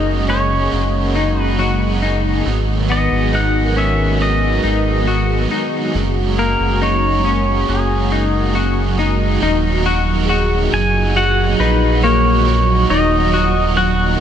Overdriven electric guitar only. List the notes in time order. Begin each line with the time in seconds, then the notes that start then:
Already playing: F#3 C#4 F#4 G#4 A#4
0.27 G#4 A#4
0.31 F#4
0.71 C#4 F#4 A#4
0.75 G#4
1.15 G#4 A#4
1.19 F#4
1.57 F#3 C#4 F#4 G#4 A#4
2.01 G#4 A#4
2.05 F#4
2.45 G#2 F#3 G#3 B3 D#4 G#4
2.88 F#3 B3 D#4 G#4
3.32 G#2 F#3 G#3 B3 D#4 G#4
3.75 B3 G#4
3.79 F#3
4.19 F#3 B3 D#4
4.23 G#4
4.63 F#3 B3 D#4 G#4
5.06 G#2 F#3 G#3 B3 D#4 G#4
5.49 F#3 B3 D#4 G#4
5.93 F#3 C#4 F#4 G#4 A#4
6.36 G#4 A#4
6.41 F#4
6.81 F#3 C#4 F#4 G#4 A#4
7.24 F#4 G#4 A#4
7.67 C#4 F#4 G#4 A#4
8.10 F#4 G#4 A#4
8.53 F#3 C#4 F#4 G#4 A#4
8.97 G#4 A#4
9.01 F#4
9.40 D#3 F#3 D#4 F#4 A#4
9.84 D#4 F#4 A#4
10.27 D#3 F#3 D#4 F#4 A#4
10.71 D#4 F#4 A#4
11.15 F#3 D#4 F#4 A#4
11.60 D#4 F#4
12.02 D#3 F#3 D#4 F#4 A#4
12.45 D#4 F#4 A#4
12.89 D#3 F#3 D#4 F#4 A#4
13.32 F#4 A#4
13.36 D#4
13.76 D#3 F#3 D#4 F#4 A#4